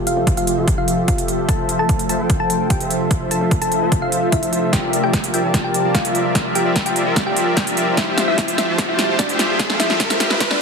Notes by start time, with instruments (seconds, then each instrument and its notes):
Already playing: ambient pad C3 F3 A3 A4 C5, supersaw synth F3 F4 G4 A4 E5
0.07 synth pluck F4 F5, closed hi-hat
0.17 808-style bass F1, supersaw synth F3 F4 G4 A4 E5
0.27 kick, closed hi-hat
0.37 synth pluck F4 F5, closed hi-hat
0.47 supersaw synth F3 F4 G4 A4 E5, closed hi-hat
0.58 supersaw synth F3 F4 G4 A4 E5
0.68 808-style bass F1, kick, closed hi-hat
0.78 synth pluck F4 F5
0.88 closed hi-hat
1.08 synth pluck F4 F5, kick, closed hi-hat
1.18 closed hi-hat
1.28 closed hi-hat
1.49 808-style bass F1, ambient pad C3 D4, supersaw synth F3 F4 A4 C5 E5, synth pluck A4 A5, kick, closed hi-hat
1.69 closed hi-hat
1.79 supersaw synth F3 F4 A4 C5 E5, synth pluck A4 A5
1.89 kick, closed hi-hat
1.99 closed hi-hat
2.09 supersaw synth F3 F4 A4 C5 E5, synth pluck A4 A5, closed hi-hat
2.20 supersaw synth F3 F4 A4 C5 G5
2.30 kick, closed hi-hat
2.40 synth pluck A4 A5
2.50 closed hi-hat
2.60 supersaw synth F3 F4 A4 C5 G5
2.70 synth pluck G4 G5, kick, closed hi-hat
2.80 supersaw synth F3 F4 A4 C5 E5, closed hi-hat
2.90 closed hi-hat
3.11 supersaw synth F3 F4 A4 C5 E5, kick, closed hi-hat
3.31 synth pluck A4 A5, closed hi-hat
3.41 808-style bass F1, supersaw synth F3 F4 A4 C5 E5
3.51 kick, closed hi-hat
3.62 synth pluck A4 A5, closed hi-hat
3.72 supersaw synth F3 F4 A4 C5 E5, closed hi-hat
3.82 supersaw synth F3 F4 A4 C5 E5
3.92 kick, closed hi-hat
4.02 synth pluck F4 F5
4.12 closed hi-hat
4.32 synth pluck E4 E5, kick, closed hi-hat
4.43 closed hi-hat
4.53 808-style bass F1, closed hi-hat
4.73 supersaw synth F3 F4 A#4 D5 E5, ambient pad G3 A#3 G4 E5, synth pluck G4 G5, kick, snare, closed hi-hat, riser
4.93 closed hi-hat
5.03 supersaw synth F3 F4 A#4 D5 E5, synth pluck G4 G5
5.13 kick, snare, closed hi-hat
5.24 closed hi-hat
5.34 supersaw synth F3 F4 A#4 D5 E5, synth pluck G4 G5, closed hi-hat
5.44 supersaw synth F3 F4 A#4 D5 A5
5.54 kick, snare, closed hi-hat
5.64 synth pluck G4 G5
5.74 closed hi-hat
5.85 supersaw synth F3 F4 A#4 D5 A5
5.95 synth pluck F4 F5, kick, snare, closed hi-hat
6.05 supersaw synth F3 F4 A#4 D5 E5, closed hi-hat
6.15 closed hi-hat
6.35 supersaw synth F3 F4 A#4 D5 E5, kick, snare, closed hi-hat
6.55 synth pluck G4 G5, closed hi-hat
6.66 808-style bass F1, supersaw synth F3 F4 A#4 D5 E5
6.76 kick, snare, closed hi-hat
6.86 synth pluck G4 G5, closed hi-hat
6.96 supersaw synth F3 F4 A#4 D5 E5, closed hi-hat
7.06 supersaw synth F3 F4 A#4 D5 E5
7.16 kick, snare, closed hi-hat
7.27 synth pluck G4 G5
7.36 closed hi-hat
7.57 synth pluck G4 G5, kick, snare, closed hi-hat
7.67 closed hi-hat
7.77 closed hi-hat
7.97 supersaw synth F3 F4 G4 C5 E5, ambient pad A3 E5, synth pluck E4 E5, kick, snare, closed hi-hat
8.18 snare, closed hi-hat
8.28 supersaw synth F3 F4 G4 C5 E5, synth pluck E4 E5
8.38 kick, snare, closed hi-hat
8.48 closed hi-hat
8.58 supersaw synth F3 F4 G4 C5 E5, synth pluck E4 E5, snare, closed hi-hat
8.68 supersaw synth F3 F4 G4 C5 A5
8.78 kick, snare, closed hi-hat
8.89 synth pluck E4 E5
8.99 snare, closed hi-hat
9.09 supersaw synth F3 F4 G4 C5 A5
9.19 synth pluck D4 D5, kick, snare, closed hi-hat
9.29 supersaw synth F3 F4 G4 C5 E5, closed hi-hat
9.39 snare, closed hi-hat
9.59 supersaw synth F3 F4 G4 C5 E5, kick, snare, closed hi-hat
9.70 snare
9.80 synth pluck E4 E5, snare, closed hi-hat
9.90 supersaw synth F3 F4 G4 C5 E5, snare
10.00 kick, snare, closed hi-hat
10.10 synth pluck E4 E5, snare, closed hi-hat
10.20 supersaw synth F3 F4 G4 C5 E5, snare, closed hi-hat
10.30 supersaw synth F3 F4 G4 C5 E5, snare
10.40 kick, snare, closed hi-hat
10.51 synth pluck D4 D5, snare